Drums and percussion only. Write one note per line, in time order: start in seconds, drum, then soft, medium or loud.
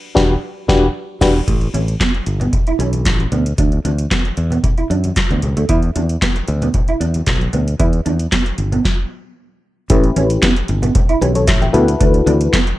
0.16 kick loud
0.16 snare loud
0.69 kick loud
0.69 snare loud
1.21 kick loud
1.21 snare loud
1.21 crash medium
1.48 kick loud
1.48 closed hi-hat medium
1.48 muted conga soft
1.61 closed hi-hat soft
1.74 closed hi-hat medium
1.74 muted conga soft
1.74 high conga medium
1.88 closed hi-hat medium
2.00 kick loud
2.00 snare loud
2.00 clap medium
2.00 closed hi-hat medium
2.00 high conga medium
2.14 closed hi-hat soft
2.26 closed hi-hat medium
2.26 high conga soft
2.40 closed hi-hat soft
2.40 low conga medium
2.53 kick loud
2.53 closed hi-hat medium
2.53 low conga medium
2.67 closed hi-hat soft
2.80 closed hi-hat medium
2.80 muted conga soft
2.80 high conga medium
2.93 closed hi-hat soft
2.93 high conga medium
3.05 kick loud
3.05 snare medium
3.05 clap medium
3.05 closed hi-hat medium
3.05 muted conga soft
3.20 closed hi-hat soft
3.20 high conga medium
3.32 closed hi-hat medium
3.32 low conga medium
3.46 closed hi-hat medium
3.58 kick loud
3.58 closed hi-hat medium
3.58 muted conga soft
3.72 closed hi-hat soft
3.85 closed hi-hat medium
3.85 high conga medium
3.98 closed hi-hat soft
4.11 kick loud
4.11 snare loud
4.11 clap medium
4.11 closed hi-hat medium
4.11 muted conga soft
4.11 high conga medium
4.25 closed hi-hat soft
4.37 closed hi-hat medium
4.37 high conga soft
4.50 closed hi-hat soft
4.50 low conga medium
4.64 kick loud
4.64 closed hi-hat medium
4.64 low conga medium
4.78 closed hi-hat soft
4.91 closed hi-hat medium
4.91 high conga medium
5.04 closed hi-hat soft
5.04 high conga medium
5.16 kick loud
5.16 snare medium
5.16 clap medium
5.16 closed hi-hat medium
5.16 muted conga soft
5.31 closed hi-hat soft
5.31 high conga medium
5.42 closed hi-hat medium
5.42 muted conga soft
5.42 low conga medium
5.57 closed hi-hat medium
5.69 kick loud
5.69 closed hi-hat medium
5.83 closed hi-hat soft
5.96 closed hi-hat medium
5.96 muted conga soft
5.96 high conga medium
6.09 closed hi-hat soft
6.22 kick loud
6.22 snare loud
6.22 clap medium
6.22 closed hi-hat medium
6.22 muted conga soft
6.22 high conga medium
6.36 closed hi-hat soft
6.48 closed hi-hat medium
6.48 high conga soft
6.62 closed hi-hat soft
6.62 low conga medium
6.74 kick loud
6.74 closed hi-hat medium
6.74 muted conga soft
6.74 low conga medium
6.88 closed hi-hat soft
7.01 closed hi-hat medium
7.01 muted conga soft
7.01 high conga medium
7.14 closed hi-hat soft
7.14 high conga medium
7.27 kick loud
7.27 snare medium
7.27 clap medium
7.27 closed hi-hat medium
7.27 muted conga soft
7.41 closed hi-hat soft
7.41 high conga medium
7.53 closed hi-hat medium
7.53 muted conga soft
7.53 low conga medium
7.68 closed hi-hat medium
7.80 kick loud
7.80 closed hi-hat medium
7.80 muted conga soft
7.93 closed hi-hat soft
8.06 closed hi-hat medium
8.06 muted conga soft
8.06 high conga medium
8.19 closed hi-hat soft
8.32 kick loud
8.32 snare loud
8.32 clap medium
8.32 closed hi-hat medium
8.32 high conga medium
8.46 closed hi-hat soft
8.58 closed hi-hat medium
8.58 muted conga soft
8.58 high conga soft
8.72 closed hi-hat soft
8.72 low conga medium
8.85 kick loud
8.85 snare medium
9.90 kick loud
9.90 closed hi-hat loud
10.04 closed hi-hat soft
10.16 closed hi-hat medium
10.16 muted conga soft
10.16 high conga medium
10.30 closed hi-hat medium
10.43 kick loud
10.43 snare loud
10.43 clap medium
10.43 closed hi-hat loud
10.43 muted conga soft
10.43 high conga medium
10.56 closed hi-hat soft
10.68 closed hi-hat medium
10.68 muted conga soft
10.68 high conga medium
10.82 closed hi-hat soft
10.82 low conga medium
10.95 kick loud
10.95 closed hi-hat medium
10.95 muted conga soft
10.95 low conga medium
11.09 closed hi-hat soft
11.22 closed hi-hat medium
11.22 muted conga soft
11.22 high conga medium
11.35 closed hi-hat medium
11.35 high conga medium
11.47 kick loud
11.47 snare loud
11.47 clap medium
11.47 closed hi-hat loud
11.62 closed hi-hat soft
11.62 high conga medium
11.74 closed hi-hat medium
11.74 low conga medium
11.88 closed hi-hat medium
12.01 kick loud
12.01 closed hi-hat medium
12.14 closed hi-hat soft
12.27 closed hi-hat medium
12.27 muted conga soft
12.27 high conga loud
12.41 closed hi-hat medium
12.53 kick loud
12.53 snare loud
12.53 clap medium
12.53 closed hi-hat loud
12.53 muted conga soft
12.53 high conga medium
12.67 closed hi-hat soft